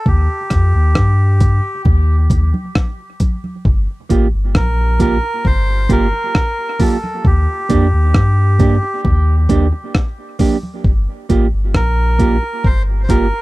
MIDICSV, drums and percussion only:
0, 0, Header, 1, 2, 480
1, 0, Start_track
1, 0, Key_signature, -2, "minor"
1, 0, Tempo, 899550
1, 30, Time_signature, 4, 2, 24, 8
1, 7159, End_track
2, 0, Start_track
2, 0, Title_t, "Drums"
2, 31, Note_on_c, 9, 36, 103
2, 33, Note_on_c, 9, 64, 66
2, 84, Note_off_c, 9, 36, 0
2, 87, Note_off_c, 9, 64, 0
2, 268, Note_on_c, 9, 37, 67
2, 270, Note_on_c, 9, 42, 63
2, 272, Note_on_c, 9, 36, 86
2, 322, Note_off_c, 9, 37, 0
2, 324, Note_off_c, 9, 42, 0
2, 325, Note_off_c, 9, 36, 0
2, 509, Note_on_c, 9, 37, 107
2, 510, Note_on_c, 9, 36, 104
2, 511, Note_on_c, 9, 63, 46
2, 562, Note_off_c, 9, 37, 0
2, 564, Note_off_c, 9, 36, 0
2, 564, Note_off_c, 9, 63, 0
2, 749, Note_on_c, 9, 42, 62
2, 749, Note_on_c, 9, 64, 67
2, 750, Note_on_c, 9, 36, 95
2, 802, Note_off_c, 9, 64, 0
2, 803, Note_off_c, 9, 42, 0
2, 804, Note_off_c, 9, 36, 0
2, 987, Note_on_c, 9, 64, 74
2, 989, Note_on_c, 9, 36, 107
2, 1041, Note_off_c, 9, 64, 0
2, 1043, Note_off_c, 9, 36, 0
2, 1226, Note_on_c, 9, 63, 50
2, 1226, Note_on_c, 9, 64, 73
2, 1227, Note_on_c, 9, 36, 101
2, 1230, Note_on_c, 9, 42, 72
2, 1280, Note_off_c, 9, 63, 0
2, 1280, Note_off_c, 9, 64, 0
2, 1281, Note_off_c, 9, 36, 0
2, 1284, Note_off_c, 9, 42, 0
2, 1355, Note_on_c, 9, 63, 72
2, 1408, Note_off_c, 9, 63, 0
2, 1468, Note_on_c, 9, 63, 50
2, 1469, Note_on_c, 9, 37, 106
2, 1470, Note_on_c, 9, 36, 109
2, 1522, Note_off_c, 9, 63, 0
2, 1523, Note_off_c, 9, 37, 0
2, 1524, Note_off_c, 9, 36, 0
2, 1707, Note_on_c, 9, 42, 73
2, 1708, Note_on_c, 9, 36, 92
2, 1712, Note_on_c, 9, 63, 65
2, 1760, Note_off_c, 9, 42, 0
2, 1761, Note_off_c, 9, 36, 0
2, 1766, Note_off_c, 9, 63, 0
2, 1835, Note_on_c, 9, 63, 42
2, 1888, Note_off_c, 9, 63, 0
2, 1948, Note_on_c, 9, 36, 116
2, 1951, Note_on_c, 9, 64, 68
2, 2001, Note_off_c, 9, 36, 0
2, 2004, Note_off_c, 9, 64, 0
2, 2189, Note_on_c, 9, 36, 89
2, 2189, Note_on_c, 9, 42, 73
2, 2242, Note_off_c, 9, 42, 0
2, 2243, Note_off_c, 9, 36, 0
2, 2427, Note_on_c, 9, 37, 109
2, 2428, Note_on_c, 9, 36, 110
2, 2431, Note_on_c, 9, 63, 48
2, 2480, Note_off_c, 9, 37, 0
2, 2481, Note_off_c, 9, 36, 0
2, 2485, Note_off_c, 9, 63, 0
2, 2667, Note_on_c, 9, 42, 69
2, 2668, Note_on_c, 9, 36, 94
2, 2669, Note_on_c, 9, 64, 67
2, 2721, Note_off_c, 9, 36, 0
2, 2721, Note_off_c, 9, 42, 0
2, 2722, Note_off_c, 9, 64, 0
2, 2907, Note_on_c, 9, 36, 104
2, 2907, Note_on_c, 9, 64, 78
2, 2960, Note_off_c, 9, 36, 0
2, 2960, Note_off_c, 9, 64, 0
2, 3145, Note_on_c, 9, 36, 93
2, 3146, Note_on_c, 9, 63, 50
2, 3146, Note_on_c, 9, 64, 70
2, 3147, Note_on_c, 9, 42, 71
2, 3198, Note_off_c, 9, 36, 0
2, 3200, Note_off_c, 9, 63, 0
2, 3200, Note_off_c, 9, 64, 0
2, 3201, Note_off_c, 9, 42, 0
2, 3387, Note_on_c, 9, 37, 106
2, 3388, Note_on_c, 9, 36, 111
2, 3441, Note_off_c, 9, 36, 0
2, 3441, Note_off_c, 9, 37, 0
2, 3626, Note_on_c, 9, 36, 91
2, 3626, Note_on_c, 9, 46, 73
2, 3630, Note_on_c, 9, 63, 64
2, 3680, Note_off_c, 9, 36, 0
2, 3680, Note_off_c, 9, 46, 0
2, 3683, Note_off_c, 9, 63, 0
2, 3755, Note_on_c, 9, 63, 43
2, 3808, Note_off_c, 9, 63, 0
2, 3866, Note_on_c, 9, 36, 106
2, 3869, Note_on_c, 9, 64, 71
2, 3920, Note_off_c, 9, 36, 0
2, 3922, Note_off_c, 9, 64, 0
2, 4107, Note_on_c, 9, 42, 70
2, 4108, Note_on_c, 9, 36, 91
2, 4160, Note_off_c, 9, 42, 0
2, 4161, Note_off_c, 9, 36, 0
2, 4346, Note_on_c, 9, 36, 99
2, 4346, Note_on_c, 9, 37, 104
2, 4350, Note_on_c, 9, 63, 48
2, 4399, Note_off_c, 9, 37, 0
2, 4400, Note_off_c, 9, 36, 0
2, 4403, Note_off_c, 9, 63, 0
2, 4586, Note_on_c, 9, 42, 61
2, 4586, Note_on_c, 9, 64, 71
2, 4587, Note_on_c, 9, 36, 94
2, 4639, Note_off_c, 9, 64, 0
2, 4640, Note_off_c, 9, 42, 0
2, 4641, Note_off_c, 9, 36, 0
2, 4827, Note_on_c, 9, 36, 112
2, 4828, Note_on_c, 9, 64, 77
2, 4880, Note_off_c, 9, 36, 0
2, 4881, Note_off_c, 9, 64, 0
2, 5065, Note_on_c, 9, 36, 90
2, 5065, Note_on_c, 9, 63, 52
2, 5065, Note_on_c, 9, 64, 72
2, 5067, Note_on_c, 9, 42, 73
2, 5118, Note_off_c, 9, 36, 0
2, 5118, Note_off_c, 9, 63, 0
2, 5118, Note_off_c, 9, 64, 0
2, 5121, Note_off_c, 9, 42, 0
2, 5307, Note_on_c, 9, 37, 106
2, 5308, Note_on_c, 9, 36, 105
2, 5360, Note_off_c, 9, 37, 0
2, 5361, Note_off_c, 9, 36, 0
2, 5545, Note_on_c, 9, 46, 73
2, 5546, Note_on_c, 9, 36, 91
2, 5551, Note_on_c, 9, 63, 64
2, 5599, Note_off_c, 9, 46, 0
2, 5600, Note_off_c, 9, 36, 0
2, 5604, Note_off_c, 9, 63, 0
2, 5673, Note_on_c, 9, 63, 46
2, 5727, Note_off_c, 9, 63, 0
2, 5786, Note_on_c, 9, 36, 114
2, 5839, Note_off_c, 9, 36, 0
2, 6028, Note_on_c, 9, 36, 91
2, 6028, Note_on_c, 9, 42, 65
2, 6081, Note_off_c, 9, 36, 0
2, 6081, Note_off_c, 9, 42, 0
2, 6266, Note_on_c, 9, 36, 107
2, 6267, Note_on_c, 9, 37, 100
2, 6320, Note_off_c, 9, 36, 0
2, 6320, Note_off_c, 9, 37, 0
2, 6507, Note_on_c, 9, 36, 93
2, 6507, Note_on_c, 9, 42, 65
2, 6560, Note_off_c, 9, 36, 0
2, 6561, Note_off_c, 9, 42, 0
2, 6746, Note_on_c, 9, 36, 109
2, 6800, Note_off_c, 9, 36, 0
2, 6984, Note_on_c, 9, 36, 96
2, 6988, Note_on_c, 9, 42, 71
2, 7037, Note_off_c, 9, 36, 0
2, 7042, Note_off_c, 9, 42, 0
2, 7159, End_track
0, 0, End_of_file